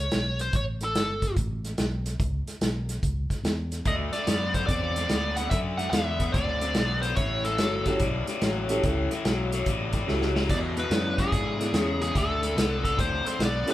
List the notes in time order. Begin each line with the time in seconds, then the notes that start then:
Already playing: C#2 C#5
0.11 B1, snare, closed hi-hat
0.39 C5, snare, closed hi-hat
0.53 A1 C#5, kick, closed hi-hat
0.81 A4, snare, closed hi-hat
0.95 G1, snare, closed hi-hat
1.22 kick, snare, closed hi-hat
1.37 A1, kick, closed hi-hat
1.65 snare, closed hi-hat
1.78 B1, snare, closed hi-hat
2.06 snare, closed hi-hat
2.20 C#2, kick, closed hi-hat
2.46 muted fingered electric bass stroke, snare, closed hi-hat
2.61 B1, snare, closed hi-hat
2.89 snare, closed hi-hat
3.03 C#2, kick, closed hi-hat
3.30 muted fingered electric bass stroke, kick, snare, closed hi-hat
3.44 E2, snare, closed hi-hat
3.72 snare, closed hi-hat
3.85 D2 D3 A3 D#5, kick, closed hi-hat
4.13 D3 A3 D5, muted fingered electric bass stroke, snare, closed hi-hat
4.27 F#2 D3 B3, snare, closed hi-hat
4.54 D3 B3 C5, kick, snare, closed hi-hat
4.67 E2 D3 C4 D5, kick, snare, closed hi-hat
4.96 D3 C4, snare, closed hi-hat
5.09 D2 D3 B3, snare, closed hi-hat
5.36 D3 B3 F#5, snare, closed hi-hat
5.50 F#2 D3 A3 E5, kick, closed hi-hat
5.78 D3 A3 F#5, snare, closed hi-hat
5.91 E2 D3 E5, snare, closed hi-hat
5.95 B3
6.20 D3 B3, kick, snare, closed hi-hat
6.32 D2 D3 C4 D5, kick, closed hi-hat
6.61 D3 C4, snare, closed hi-hat
6.75 B1 D3 B3, snare, closed hi-hat
7.02 D3 B3 C5, snare, closed hi-hat
7.16 A1 A2 E3 C#5, kick, closed hi-hat
7.44 A2 E3 A4, snare, closed hi-hat
7.58 G1 A2 F#3, snare, closed hi-hat
7.86 A2 F#3 C#4 E4 G4 A4, kick, snare, closed hi-hat
7.99 B1 A2 G3, kick, snare, closed hi-hat
8.27 A2 G3, snare, closed hi-hat
8.41 A1 A2 F#3, snare, closed hi-hat
8.69 A2 F#3 C#4 E4 G4 A4, snare, closed hi-hat
8.83 C#2 A2 E3 C#4 E4 A4, kick, snare, closed hi-hat
9.11 A2 E3, snare, closed hi-hat
9.25 B1 A2 F#3, snare, closed hi-hat
9.52 A2 F#3, snare, closed hi-hat
9.66 A1 A2 G3, kick, closed hi-hat
9.93 A2 G3, kick, snare, closed hi-hat
10.07 C#2 A2 F#3 C#4 E4 G4 A4, snare
10.22 snare
10.35 A2 F#3, snare
10.49 E2 B2 D5, kick, closed hi-hat, crash
10.77 E2 B2 B4, snare, closed hi-hat
10.90 E2 F#2 C#3 B3 D4 E4 G#4, snare, closed hi-hat
11.18 E2 C#3 G#4, kick, snare, closed hi-hat
11.32 E2 G#2 D3, kick, snare, closed hi-hat
11.59 E2 D3 B3 D4 E4 G#4, snare, closed hi-hat
11.72 E2 C#3, snare, closed hi-hat
12.00 E2 C#3 G#4, snare, closed hi-hat
12.14 D2 D3 A3 A4, kick, snare, closed hi-hat
12.42 D3 A3, snare, closed hi-hat
12.56 C2 D3 B3, snare, closed hi-hat
12.84 D3 B3 A4, kick, snare, closed hi-hat
12.97 D2 D3 C4 C5, kick, closed hi-hat
13.25 D3 C4 C5, snare, closed hi-hat
13.38 B1 D3 B3, snare, closed hi-hat
13.45 D5
13.66 D3 B3 C#4 E4 G4 A4, snare, closed hi-hat